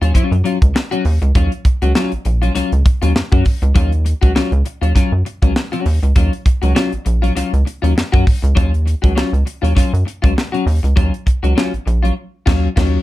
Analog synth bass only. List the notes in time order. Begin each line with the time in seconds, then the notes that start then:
0.02 D#2
0.15 F#2
0.31 F#2
0.62 C#2
1.05 D#2
1.22 C#2
1.35 D#2
1.82 C#2
2.12 A#1
2.26 A#1
2.56 C#2
2.72 C#2
3.02 D#2
3.16 F#2
3.32 F#2
3.62 C#2
3.76 D#2
4.23 C#2
4.36 C#2
4.52 C#2
4.82 D#2
4.96 F#2
5.12 F#2
5.42 C#2
5.86 D#2
6.03 C#2
6.16 D#2
6.63 C#2
6.93 A#1
7.06 A#1
7.36 C#2
7.53 C#2
7.83 D#2
7.96 F#2
8.14 F#2
8.43 C#2
8.57 D#2
9.04 C#2
9.17 C#2
9.33 C#2
9.63 D#2
9.77 F#2
9.93 F#2
10.24 C#2
10.66 D#2
10.84 C#2
10.97 D#2
11.43 C#2
11.73 A#1
11.87 A#1
12.47 D#2
12.77 D#2